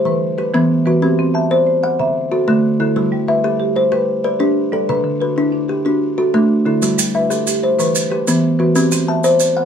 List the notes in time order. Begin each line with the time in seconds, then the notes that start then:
Already playing: C5
0.05 E3 B4
0.38 G4 B4
0.54 E3 B3
0.86 E3 F#4 B4
1.02 C4 G4
1.19 C4
1.34 E5 A5
1.50 C5 D5
1.67 C5
1.83 F#5
1.99 D3 E5
2.32 F#4 A4
2.48 D3 A3
2.80 D3 E4 A4
2.96 G3 F#4
3.12 G3
3.28 B4 E5
3.44 G4 A4
3.60 G4
3.76 C5
3.92 G4 B4
4.24 B4 D5
4.40 D4 G4
4.72 G3 A4 D5
4.89 D3 B4
5.04 D3
5.21 F#4 B4
5.36 D4 E4
5.52 D4
5.68 G4
5.85 D4 F#4
6.18 F#4 A4
6.34 A3 D4
6.66 D3 E4 A4
6.82 G3 F#4, maracas
6.98 G3, maracas
7.15 B4 E5
7.30 G4 A4, maracas
7.47 G4, maracas
7.63 C5
7.79 E3 B4, maracas
7.95 maracas
8.10 G4 B4
8.27 E3 B3, maracas
8.59 E3 F#4 B4
8.75 C4 G4, maracas
8.92 C4, maracas
9.08 E5 A5
9.24 C5 D5, maracas
9.40 C5, maracas
9.56 F#5